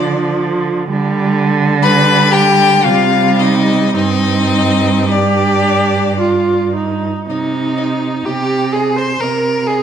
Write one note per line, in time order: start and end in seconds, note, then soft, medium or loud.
0.00 0.86 D3 medium
0.00 0.88 F3 medium
0.00 0.45 D4 loud
0.00 0.44 D5 loud
0.89 2.87 D3 loud
0.89 1.78 G3 medium
1.82 2.83 G3 loud
1.82 2.32 B4 loud
1.82 2.34 B5 loud
2.31 2.88 G4 loud
2.31 2.85 G5 loud
2.83 3.95 C3 medium
2.83 3.96 G3 loud
2.83 3.42 F4 loud
2.83 3.41 F5 loud
3.39 3.94 D#4 loud
3.39 3.95 D#5 loud
3.94 7.03 G2 loud
3.94 5.09 C4 medium
3.94 5.13 D#4 loud
3.94 5.13 D#5 loud
5.09 6.77 D4 medium
5.09 6.16 G4 loud
5.09 6.76 D5 medium
6.20 6.75 F4 medium
6.76 7.28 D#4 medium
7.28 8.14 C3 medium
7.28 8.27 D#4 medium
7.28 7.38 D#5 medium
7.77 7.85 D#5 medium
8.25 9.09 C3 medium
8.25 8.75 G4 medium
8.25 8.73 G4 medium
8.25 8.35 D#5 medium
8.72 8.98 G#4 medium
8.72 9.00 G#4 medium
8.72 8.83 D#5 medium
8.96 9.21 C5 medium
8.96 9.22 C5 loud
9.20 9.83 C3 medium
9.20 9.69 A#4 medium
9.20 9.31 D#5 medium
9.67 9.83 G#4 medium
9.67 9.77 D#5 medium